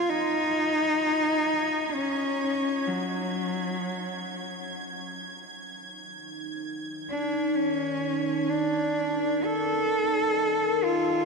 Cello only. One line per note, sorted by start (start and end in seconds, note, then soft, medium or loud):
0.00 0.11 F4 loud
0.09 1.96 D#4 loud
1.94 2.89 C#4 medium
2.87 4.75 F#3 medium
7.10 7.57 D4 medium
7.55 8.52 C#4 medium
8.50 9.46 D4 medium
9.45 10.85 A4 loud
10.83 11.25 F4 loud